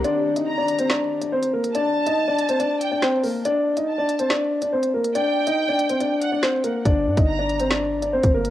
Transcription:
<<
  \new Staff \with { instrumentName = "Violin section" } { \time 4/4 \key bes \major \tempo 4 = 141 r4 bes''4 r2 | a''2~ a''8 g''8 r4 | r4 a''4 r2 | g''2~ g''8 fis''8 r4 |
r4 bes''4 r2 | }
  \new Staff \with { instrumentName = "Grand piano" } { \time 4/4 \key bes \major <d' d''>8. <ees' ees''>8 <d' d''>8 <c' c''>16 <d' d''>8. <d' d''>16 <c' c''>8 <bes bes'>8 | <d' d''>8. <ees' ees''>8 <d' d''>8 <c' c''>16 <d' d''>8. <d' d''>16 <c' c''>8 <bes bes'>8 | <d' d''>8. <ees' ees''>8 <d' d''>8 <c' c''>16 <d' d''>8. <d' d''>16 <c' c''>8 <bes bes'>8 | <d' d''>8. <ees' ees''>8 <d' d''>8 <c' c''>16 <d' d''>8. <d' d''>16 <c' c''>8 <bes bes'>8 |
<d' d''>8. <ees' ees''>8 <d' d''>8 <c' c''>16 <d' d''>8. <d' d''>16 <c' c''>8 <bes bes'>8 | }
  \new Staff \with { instrumentName = "808-style bass" } { \clef bass \time 4/4 \key bes \major r1 | r1 | r1 | r1 |
g,,8 g,16 g,,2~ g,,8 g,,8. | }
  \new DrumStaff \with { instrumentName = "Drums" } \drummode { \time 4/4 hh8. hh16 r8 hh16 hh16 sn8. hh16 r16 hh8 hh16 | hh8. hh16 r8 hh16 hh16 hh8 hh8 sn8 hho8 | hh8. hh16 r8 hh16 hh16 sn8. hh16 r16 hh8 hh16 | hh8. hh16 r8 hh16 hh16 hh8 hh8 sn8 hh8 |
<hh bd>8. <hh bd>16 r8 hh16 hh16 sn8. hh16 r16 <hh bd>8 hh16 | }
>>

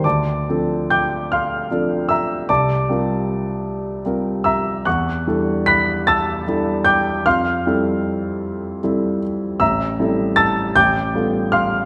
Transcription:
\new Staff \with { instrumentName = "Grand piano" } { \time 6/8 \key d \minor \tempo 4. = 51 << { <d'' a'' d'''>4 <g'' d''' g'''>8 <f'' c''' f'''>4 <e'' bes'' e'''>8 | <d'' a'' d'''>2~ <d'' a'' d'''>8 <e'' bes'' e'''>8 | <fis'' cis''' fis'''>4 <b'' fis''' b'''>8 <a'' e''' a'''>4 <g'' d''' g'''>8 | <f'' c''' f'''>2~ <f'' c''' f'''>8 r8 |
<e'' bes'' e'''>4 <a'' e''' a'''>8 <g'' d''' g'''>4 <f'' c''' f'''>8 | } \\ { d,8 <f c' d' a'>4. <f c' d' a'>4 | c,8 <g c' f' bes'>4. <g c' f' bes'>4 | e,8 <g d' e' a'>4. <g d' e' a'>4 | f,8 <g c' e' a'>4. <g c' e' a'>4 |
a,,8 <g c' e' a'>4 a,,8 <g b f' a'>4 | } >> }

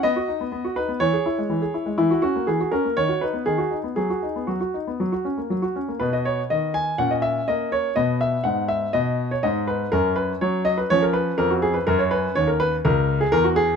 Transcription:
<<
  \new Staff \with { instrumentName = "Grand piano" } { \time 4/4 \key b \major \tempo 4 = 123 << { dis''4. b'8 cis''2 | e'8 fis'8 gis'8 ais'8 cis''8 b'8 gis'4 | gis'4 fis'2~ fis'8 r8 | b'16 dis''16 cis''8 dis''8 gis''8 fis''16 dis''16 e''8 dis''8 cis''8 |
dis''8 e''8 fis''8 e''8 dis''8. cis''16 dis''8 b'8 | ais'8 b'8 cis''8 dis''16 b'16 cis''16 ais'16 b'8 ais'16 fis'16 gis'16 b'16 | ais'16 cis''16 b'8 cis''16 ais'16 b'8 ais'8. gis'16 ais'16 fis'16 gis'8 | } \\ { r1 | r1 | r1 | b2 cis'2 |
b1 | cis'2 cis'2 | cis'1 | } >> }
  \new Staff \with { instrumentName = "Grand piano" } { \time 4/4 \key b \major b16 fis'16 dis'16 b16 b16 fis'16 dis'16 b16 e16 gis'16 e'16 gis16 e16 gis'16 e'16 gis16 | e16 fis'16 cis'16 ais16 e16 fis'16 cis'16 ais16 dis16 fis'16 dis'16 b16 dis16 fis'16 dis'16 b16 | fis16 fis'16 dis'16 b16 fis16 fis'16 dis'16 b16 fis16 fis'16 cis'16 ais16 fis16 fis'16 cis'16 ais16 | b,4 dis4 ais,4 ais4 |
b,4 gis,4 b,4 gis,4 | fis,4 fis4 eis4 eis,4 | fis,4 dis,4 cis,4 e,4 | }
>>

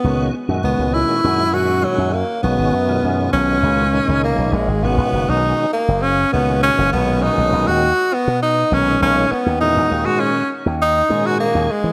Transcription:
<<
  \new Staff \with { instrumentName = "Tenor saxophone" } { \time 4/4 \key des \mixolydian \tempo 4 = 100 ces'8 r8 ces'8 fes'4 ges'8 ges8 bes8 | ces'4. des'4. bes8 aes8 | \key gis \dorian b8. dis'8. ais8 cis'8 b8 cis'8 b8 | dis'8. fis'8. b8 dis'8 cis'8 cis'8 b8 |
dis'8. fis'16 cis'8 r8 dis'8. fis'16 ais8 gis8 | }
  \new Staff \with { instrumentName = "Tonewheel organ" } { \clef bass \time 4/4 \key des \mixolydian <bes, ees aes des' ges'>8 r16 <bes, ees aes des' ges'>4~ <bes, ees aes des' ges'>16 <bes, ees aes des' ges'>8 <bes, ees aes des' ges'>4 r8 | <ces ees aes des' ges'>8 r16 <ces ees aes des' f'>4~ <ces ees aes des' f'>16 <bes, ees aes des' ges'>8 <bes, ees aes des' ees'>4 r8 | \key gis \dorian <b, dis gis cis' fis'>4. r4 <ais, dis gis cis' fis'>4 <ais, dis gis cis' fis'>8~ | <ais, dis gis cis' fis'>4 r4. <ais, dis gis cis' dis'>4 r8 |
<ais, dis gis cis' fis'>4. r4 <ais, dis gis cis' gis'>4 r8 | }
  \new Staff \with { instrumentName = "Slap bass" } { \clef bass \time 4/4 \key des \mixolydian des,8 r16 ges,16 des,16 des,8 r16 ges,4~ ges,16 ges,8 r16 | ces,16 aes,,16 ges,8 ges,8 ces,8 des,8. des,8 ces,16 bes,,16 aes,,16 | \key gis \dorian gis,,16 gis,,16 fis,,16 b,,8 r8 fis,,8. cis,8. fis,,16 b,,8~ | b,,16 b,,16 b,,16 dis,8 r8 b,8. b,,8 b,,8 r16 dis,16 |
e,16 e,16 dis,16 gis,8 r8 dis,8. gis,8. dis,16 r16 e16 | }
>>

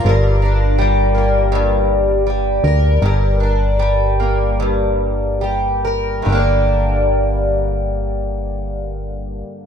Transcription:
<<
  \new Staff \with { instrumentName = "Twelve-string acoustic guitar" } { \clef bass \time 4/4 \key g \minor \tempo 4 = 74 <g, bes'>8 d'8 g8 bes8 g,4 g8 bes'8 | <g, bes'>8 d'8 g8 bes8 g,4 g8 bes'8 | <g, d g bes d' bes'>1 | }
  \new Staff \with { instrumentName = "FM bass" } { \clef bass \time 4/4 \key g \minor g,,2.~ g,,8 d,8 | g,,1 | g,,1 | }
>>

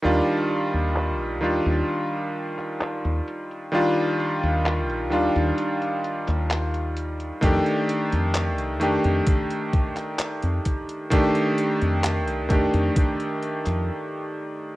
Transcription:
<<
  \new Staff \with { instrumentName = "Electric grand piano" } { \time 4/4 \key ees \lydian \tempo 4 = 65 <ees g d' f'>4. <ees g d' f'>2~ <ees g d' f'>8 | <ees g d' f'>4. <ees g d' f'>2~ <ees g d' f'>8 | <ees a d' g'>4. <ees a d' g'>2~ <ees a d' g'>8 | <ees a d' g'>4. <ees a d' g'>2~ <ees a d' g'>8 | }
  \new Staff \with { instrumentName = "Fretless electric bass" } { \clef bass \time 4/4 \key ees \lydian ees,16 r8 ees,8 bes,,16 ees,16 ees,16 r4 r16 ees,16 r8 | r8. ees,8 bes,,16 ees,16 ees,16 r8. ees,4 r16 | f,16 r8 f,8 c,16 f,16 f,16 r4 r16 f,16 r8 | r8. f,8 c,16 f,16 f,16 r8. f,16 r4 | }
  \new DrumStaff \with { instrumentName = "Drums" } \drummode { \time 4/4 r4 <hc hh>16 hh8. hh16 hh16 hh16 <hc hh>16 <hc hh>16 hh16 hh16 hh16 | hh16 hh16 hh16 hh16 <hc hh>16 hh16 hh16 hh16 hh16 hh16 hh16 <hc hh>16 <hc hh>16 hh16 hh16 hh16 | <hh bd>16 hh16 hh16 hh16 <hc hh>16 hh16 hh16 hh16 <hh bd>16 hh16 <hh bd>16 <hc hh>16 <hc hh>16 hh16 <hh bd>16 hh16 | <hh bd>16 hh16 hh16 hh16 <hc hh>16 hh16 <hh bd>16 hh16 <hh bd>16 hh16 hh16 <hc hh>16 r4 | }
>>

